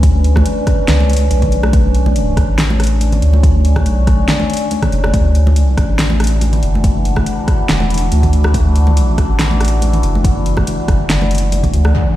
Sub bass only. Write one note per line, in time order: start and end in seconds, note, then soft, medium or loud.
0.00 0.44 D2 loud
0.88 1.29 C#2 medium
1.31 1.72 B1 loud
1.73 2.36 B1 loud
2.37 3.21 A1 loud
3.22 3.85 D2 loud
3.86 4.27 B1 medium
4.92 5.12 F#1 loud
5.14 5.58 D2 loud
5.58 5.76 C#2 loud
5.77 6.61 A1 loud
6.63 7.25 F#1 loud
7.69 8.10 E1 medium
8.12 8.53 D2 medium
8.54 9.16 D2 loud
9.18 10.02 A1 loud
10.03 10.65 F#1 loud
10.88 11.72 F#1 loud
11.73 11.93 D2 loud